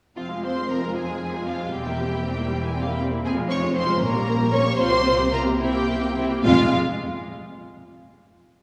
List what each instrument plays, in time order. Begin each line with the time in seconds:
0.17 double bass section F1, cello section F2, viola section F3 C4, violin section F4 F5
0.29 viola section G#3 F4
0.43 viola section F3 C4, violin section C5 C6
0.56 viola section G#3 F4
0.69 viola section F3 C4, violin section A#4 A#5
0.81 viola section G#3 F4
0.95 viola section F3 C4, violin section G#4 G#5
1.08 viola section G#3 F4
1.21 viola section F3 C4
1.35 viola section G#3 F4
1.47 viola section F3 C4, violin section F4 F5
1.60 viola section G#3 F4
1.72 double bass section E1, cello section E2, viola section G3 C4, violin section G4 G5
1.86 viola section A#3 E4
1.98 viola section G3 C4
2.11 viola section A#3 E4
2.23 viola section G3 C4
2.36 viola section A#3 E4
2.47 viola section G3 C4
2.61 viola section A#3 E4, violin section G#5
2.74 viola section G3 C4, violin section G5
2.82 violin section F5
2.87 viola section A#3 E4
2.93 violin section G5
2.99 viola section G3 C4
3.11 viola section A#3 E4
3.25 double bass section F1, cello section F2, viola section F3 C4, violin section G#4 G#5
3.37 viola section G#3 F4
3.49 viola section F3 C4, violin section C#5 C#6
3.61 viola section G#3 F4
3.74 viola section F3 C4, violin section C5 C6
3.87 viola section G#3 F4
4.00 double bass section A#1, cello section A#2, viola section A#3 C#4, violin section A#4 A#5
4.13 viola section G3 A#3
4.26 viola section A#3 C#4
4.39 viola section G3 A#3
4.52 viola section A#3 C#4, violin section C#5 C#6
4.64 viola section G3 A#3
4.77 double bass section C2, cello section C3, viola section C4 F4, violin section C5 C6
4.91 viola section A#3 G4
5.04 viola section C4 F4
5.18 viola section A#3 G4
5.31 viola section C4 F4, violin section A#4 A#5
5.45 viola section A#3 G4
5.58 viola section C4 E4, violin section G4 G5
5.73 viola section A#3 G4
5.86 viola section C4 E4
6.01 viola section A#3 G4
6.16 viola section C4 E4
6.31 viola section A#3 G4
6.44 double bass section F1, cello section F2, viola section G#3 F4, violin section F4 F5